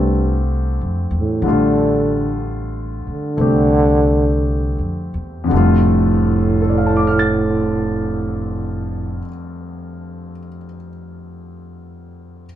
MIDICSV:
0, 0, Header, 1, 5, 480
1, 0, Start_track
1, 0, Key_signature, -1, "major"
1, 0, Tempo, 941915
1, 731, Time_signature, 4, 2, 24, 8
1, 1222, Tempo, 1015228
1, 2182, Tempo, 1104972
1, 5713, End_track
2, 0, Start_track
2, 0, Title_t, "Grand piano"
2, 0, Program_c, 0, 0
2, 0, Control_c, 0, 64, 127
2, 0, Note_on_c, 0, 50, 48
2, 0, Note_on_c, 0, 55, 44
2, 0, Note_on_c, 0, 57, 39
2, 0, Note_on_c, 0, 60, 36
2, 0, Note_on_c, 0, 65, 57
2, 0, Note_on_c, 0, 67, 44
2, 718, Note_off_c, 0, 50, 0
2, 726, Note_on_c, 0, 50, 47
2, 728, Note_off_c, 0, 55, 0
2, 733, Note_off_c, 0, 57, 0
2, 735, Note_off_c, 0, 60, 0
2, 736, Note_on_c, 0, 55, 39
2, 738, Note_off_c, 0, 65, 0
2, 739, Note_off_c, 0, 67, 0
2, 743, Note_on_c, 0, 57, 43
2, 754, Note_on_c, 0, 65, 49
2, 1675, Note_off_c, 0, 57, 0
2, 1682, Note_on_c, 0, 57, 38
2, 1692, Note_on_c, 0, 60, 33
2, 1701, Note_on_c, 0, 67, 41
2, 2621, Note_on_c, 0, 41, 53
2, 2627, Note_off_c, 0, 50, 0
2, 2634, Note_on_c, 0, 50, 51
2, 2641, Note_off_c, 0, 55, 0
2, 2648, Note_off_c, 0, 57, 0
2, 2648, Note_on_c, 0, 55, 51
2, 2653, Note_off_c, 0, 60, 0
2, 2657, Note_off_c, 0, 67, 0
2, 2658, Control_c, 0, 64, 0
2, 2662, Note_off_c, 0, 65, 0
2, 2662, Note_on_c, 0, 57, 47
2, 2676, Note_on_c, 0, 65, 59
2, 2745, Control_c, 0, 64, 127
2, 3133, Note_on_c, 0, 69, 39
2, 3166, Note_on_c, 0, 74, 39
2, 3203, Note_on_c, 0, 77, 38
2, 3240, Note_on_c, 0, 81, 36
2, 3285, Note_on_c, 0, 86, 34
2, 3331, Note_on_c, 0, 89, 30
2, 3383, Note_on_c, 0, 93, 29
2, 4241, Note_off_c, 0, 41, 0
2, 4254, Note_off_c, 0, 50, 0
2, 4268, Note_off_c, 0, 55, 0
2, 4282, Note_off_c, 0, 57, 0
2, 4296, Note_off_c, 0, 65, 0
2, 4735, Note_off_c, 0, 69, 0
2, 4768, Note_off_c, 0, 74, 0
2, 4805, Note_off_c, 0, 77, 0
2, 4842, Note_off_c, 0, 81, 0
2, 4887, Note_off_c, 0, 86, 0
2, 4933, Note_off_c, 0, 89, 0
2, 4985, Note_off_c, 0, 93, 0
2, 5668, Control_c, 0, 64, 0
2, 5713, End_track
3, 0, Start_track
3, 0, Title_t, "Trombone"
3, 0, Program_c, 1, 57
3, 0, Note_on_c, 1, 43, 74
3, 264, Note_off_c, 1, 43, 0
3, 611, Note_on_c, 1, 45, 74
3, 767, Note_on_c, 1, 50, 99
3, 774, Note_off_c, 1, 45, 0
3, 1238, Note_off_c, 1, 50, 0
3, 1558, Note_on_c, 1, 50, 103
3, 2490, Note_off_c, 1, 50, 0
3, 2670, Note_on_c, 1, 45, 81
3, 4272, Note_off_c, 1, 45, 0
3, 5713, End_track
4, 0, Start_track
4, 0, Title_t, "Upright bass"
4, 0, Program_c, 2, 32
4, 0, Note_on_c, 2, 36, 77
4, 395, Note_off_c, 2, 36, 0
4, 414, Note_on_c, 2, 41, 55
4, 561, Note_off_c, 2, 41, 0
4, 564, Note_on_c, 2, 40, 64
4, 716, Note_off_c, 2, 40, 0
4, 723, Note_on_c, 2, 33, 71
4, 1515, Note_off_c, 2, 33, 0
4, 1685, Note_on_c, 2, 36, 72
4, 2316, Note_off_c, 2, 36, 0
4, 2337, Note_on_c, 2, 41, 48
4, 2482, Note_off_c, 2, 41, 0
4, 2491, Note_on_c, 2, 40, 62
4, 2640, Note_off_c, 2, 40, 0
4, 2652, Note_on_c, 2, 29, 80
4, 4254, Note_off_c, 2, 29, 0
4, 5713, End_track
5, 0, Start_track
5, 0, Title_t, "Muted upright bass strokes"
5, 1539, Note_on_c, 9, 29, 33
5, 1586, Note_off_c, 9, 29, 0
5, 5713, End_track
0, 0, End_of_file